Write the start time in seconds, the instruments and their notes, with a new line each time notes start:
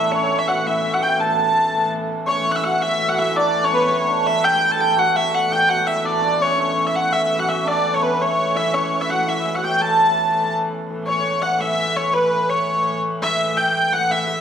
Already playing: hurdy-gurdy A2 E3 E5, hammered dulcimer B3 D4 E4 F#4
0.12 hammered dulcimer C#4, hurdy-gurdy C#5
0.39 hurdy-gurdy E5
0.48 hammered dulcimer F#4, hurdy-gurdy F#5
0.66 hammered dulcimer E4, hurdy-gurdy E5
0.92 hammered dulcimer F#4, hurdy-gurdy F#5
1.01 hammered dulcimer G4, hurdy-gurdy G5
1.19 hammered dulcimer A4, hurdy-gurdy A5
2.26 hurdy-gurdy A2 E3 C#5, hammered dulcimer C#4
2.52 hammered dulcimer E4, hurdy-gurdy E5 F#5
2.64 hammered dulcimer F#4, hurdy-gurdy F#5
2.82 hammered dulcimer E4, hurdy-gurdy E5
3.08 hammered dulcimer F#4, hurdy-gurdy F#5
3.18 hammered dulcimer E4, hurdy-gurdy E5
3.35 hammered dulcimer D4, hurdy-gurdy D5
3.63 hammered dulcimer C#4, hurdy-gurdy C#5
3.72 hammered dulcimer B3, hurdy-gurdy B4
3.76 hurdy-gurdy C#5
3.81 hammered dulcimer B3, hurdy-gurdy B4
3.89 hammered dulcimer C#4, hurdy-gurdy C#5
4.07 hammered dulcimer D4
4.27 hurdy-gurdy E5
4.43 hammered dulcimer G4, hurdy-gurdy G5
4.69 hammered dulcimer A4, hurdy-gurdy A5
4.79 hammered dulcimer G4, hurdy-gurdy G5
4.96 hammered dulcimer F#4, hurdy-gurdy F#5
5.16 hurdy-gurdy E5
5.34 hurdy-gurdy F#5
5.50 hammered dulcimer G4, hurdy-gurdy G5
5.68 hammered dulcimer F#4, hurdy-gurdy F#5
5.86 hammered dulcimer E4, hurdy-gurdy E5
5.96 hurdy-gurdy E5
6.04 hammered dulcimer D4, hurdy-gurdy D5
6.21 hammered dulcimer D4
6.40 hammered dulcimer C#4, hurdy-gurdy C#5
6.56 hurdy-gurdy A2 E3 C#5, hammered dulcimer C#4
6.84 hammered dulcimer E4, hurdy-gurdy E5
6.96 hurdy-gurdy F#5
7.11 hammered dulcimer E4, hurdy-gurdy E5
7.39 hammered dulcimer F#4, hurdy-gurdy F#5
7.49 hurdy-gurdy E5
7.65 hammered dulcimer D4, hurdy-gurdy D5
7.92 hammered dulcimer C#4, hurdy-gurdy C#5
8.01 hammered dulcimer B3, hurdy-gurdy B4
8.19 hammered dulcimer C#4, hurdy-gurdy C#5
8.55 hammered dulcimer E4, hurdy-gurdy E5
8.73 hammered dulcimer C#4, hurdy-gurdy C#5
9.00 hammered dulcimer E4, hurdy-gurdy E5
9.09 hammered dulcimer F#4, hurdy-gurdy F#5
9.27 hammered dulcimer E4, hurdy-gurdy E5
9.54 hammered dulcimer F#4, hurdy-gurdy F#5
9.63 hammered dulcimer G4, hurdy-gurdy G5
9.81 hammered dulcimer A4, hurdy-gurdy A5
10.86 hurdy-gurdy A2 E3
11.07 hurdy-gurdy C#5
11.42 hurdy-gurdy F#5
11.60 hurdy-gurdy E5
11.96 hurdy-gurdy C#5
12.14 hurdy-gurdy B4
12.50 hurdy-gurdy C#5
13.22 hurdy-gurdy E5
13.57 hurdy-gurdy G5
13.93 hurdy-gurdy F#5
14.11 hurdy-gurdy E5
14.28 hurdy-gurdy E5